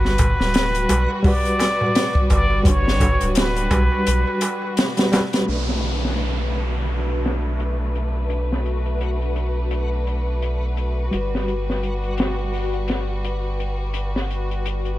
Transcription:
Already playing: sub bass G1, reed electric piano G3 F#4 B4, violin section G3 F#4 B4, synth texture F#4, muted trumpet B4
0.05 snare, darbuka tek
0.18 kick, closed hi-hat, darbuka tek, darbuka dum
0.40 sub bass D1, snare, darbuka tek
0.54 snare, closed hi-hat, darbuka tek
0.75 closed hi-hat
0.89 sub bass B1, reed electric piano G3 F#4 B4, closed hi-hat, darbuka tek
1.10 darbuka tek
1.23 reed electric piano G3 F#4, muted trumpet D5, kick, open hi-hat, darbuka tek
1.28 reed electric piano B4
1.45 closed hi-hat
1.59 snare, closed hi-hat, darbuka tek
1.80 darbuka tek, darbuka dum
1.95 snare, closed hi-hat, darbuka tek
2.15 kick
2.30 sub bass G1, muted trumpet D5, kick, closed hi-hat, darbuka tek
2.50 darbuka tek
2.64 sub bass G1, reed electric piano G3 F#4, muted trumpet C#5, kick, closed hi-hat, darbuka tek
2.69 reed electric piano D4
2.86 snare, darbuka tek
3.00 kick, closed hi-hat, darbuka tek, darbuka dum
3.21 sub bass D1, closed hi-hat, darbuka tek
3.35 muted trumpet B4, snare, closed hi-hat, darbuka tek
3.56 closed hi-hat, darbuka tek
3.71 sub bass B1, reed electric piano G3 F#4 B4, kick, closed hi-hat, darbuka tek
3.92 darbuka tek
4.07 sub bass B1, closed hi-hat, darbuka tek
4.27 darbuka tek
4.41 closed hi-hat, darbuka tek
4.62 darbuka tek
4.77 snare, closed hi-hat, darbuka tek
4.97 reed electric piano G3 F#4 B4, snare, closed hi-hat, darbuka tek
5.12 reed electric piano G3 F#4 B4, snare, closed hi-hat, darbuka tek
5.33 snare, closed hi-hat, darbuka tek
5.46 sub bass B1, reed electric piano A3 D4, violin section A3 D4 B4, synth texture F#4, closed hi-hat, downlifter
5.52 reed electric piano B4
5.69 snare
5.83 closed hi-hat
6.05 snare
6.17 closed hi-hat
6.38 closed hi-hat
6.54 closed hi-hat
6.89 open hi-hat
7.09 closed hi-hat
7.24 snare, closed hi-hat
7.60 closed hi-hat
7.95 closed hi-hat
8.30 closed hi-hat
8.52 snare
8.66 closed hi-hat
8.86 closed hi-hat
9.01 closed hi-hat
9.21 closed hi-hat
9.36 closed hi-hat
9.71 closed hi-hat
10.07 closed hi-hat
10.42 closed hi-hat
10.77 closed hi-hat
11.11 sub bass G1, reed electric piano G3 F#4, violin section G3 F#4, closed hi-hat
11.17 reed electric piano B4
11.35 snare
11.48 closed hi-hat
11.70 snare
11.83 closed hi-hat
12.03 closed hi-hat
12.17 snare, closed hi-hat
12.38 closed hi-hat
12.53 open hi-hat
12.74 closed hi-hat
12.88 snare, closed hi-hat
13.24 closed hi-hat
13.60 closed hi-hat
13.94 closed hi-hat
14.16 snare
14.30 closed hi-hat
14.51 closed hi-hat
14.66 closed hi-hat
14.85 closed hi-hat

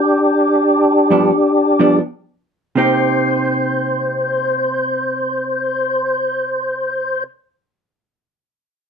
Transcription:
Already playing: tonewheel organ D4 G4
1.11 hollow-body jazz guitar G2 F3 B3 D4
1.79 hollow-body jazz guitar G2 F3 B3 D4
2.76 hollow-body jazz guitar C3 A#3 D#4 G4, tonewheel organ C5

